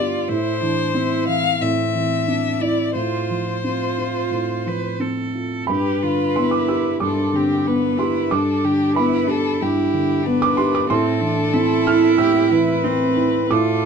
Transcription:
Already playing: G2 D3 B3 F4 G4 D5
0.28 A2 E4 C5
0.61 E3 D4
0.94 C4 E4
1.27 E3 F5
1.60 A2 C4 E5
1.94 E3
2.28 C4 D4
2.60 E4 D5
2.95 A2 F4 C5
3.30 F3
3.63 C4 F4
3.98 F4
4.31 A2
4.66 F3 B4
5.00 C4 A4
5.35 F4
5.67 G2 G4 B4 B5
6.03 D3 F4
6.36 B3 E4 C6
6.51 D6
6.68 G4 E6
7.00 G2 D4 A4 D6
7.33 D3 C4 G4
7.66 B3 B4
7.98 E4 G4 C6
8.31 G2 D4 A4 D6
8.64 D3 G4
8.96 B3 E4 B4 B5
9.28 D4 G4 A4
9.61 G2 E4 G4
9.94 D3
10.24 B3 D4 B4
10.42 D6
10.57 G4 C6
10.75 D6
10.90 A2 C4 A4 C6
11.21 E3 D4
11.54 C4 E4
11.86 E4 F6
12.18 A2 G4 E6
12.51 E3 B4
12.84 C4
13.16 E4
13.51 A2 F4 A4 D6

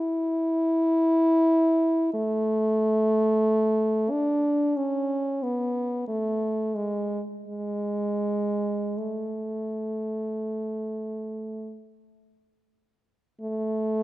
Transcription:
Already playing: E4
2.14 A3
4.11 D4
4.77 C#4
5.43 B3
6.08 A3
6.75 G#3
7.48 G#3
8.97 A3
13.41 A3

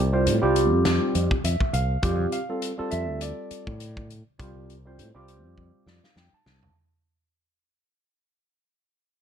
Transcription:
Already playing: C2
0.13 G3 C4 F4 C5
0.27 A2, closed hi-hat
0.42 C2 G3 C4 F4 G4
0.56 closed hi-hat
0.73 F2
0.85 F2, snare, closed hi-hat
1.15 F2, closed hi-hat
1.31 kick
1.44 F2 E5, closed hi-hat
1.60 kick
1.73 C2 F5, closed hi-hat
2.02 F2 G3 C4 F4 G4, kick, closed hi-hat
2.32 F5, closed hi-hat
2.49 G3 C4 F4 A4
2.62 closed hi-hat
2.77 G3 C4 F4 A4, muted fretless electric bass stroke
2.91 F2 E5, closed hi-hat
3.09 D2
3.21 D5, closed hi-hat
3.51 muted fretless electric bass stroke, closed hi-hat
3.67 A2, kick
3.80 closed hi-hat
3.97 kick
4.10 closed hi-hat
4.39 C2 G3 C4 F4 G4, kick, closed hi-hat
4.70 closed hi-hat
4.85 G3 C4 F4 C5
4.98 A2, closed hi-hat
5.14 C2 G3 C4 F4 G4
5.28 closed hi-hat
5.45 F2
5.58 F2, kick
5.86 F2 D5, snare
6.04 F5, snare
6.16 F2 G5, snare
6.33 A5, muted fretless electric bass stroke
6.46 C2, snare
6.63 floor tom

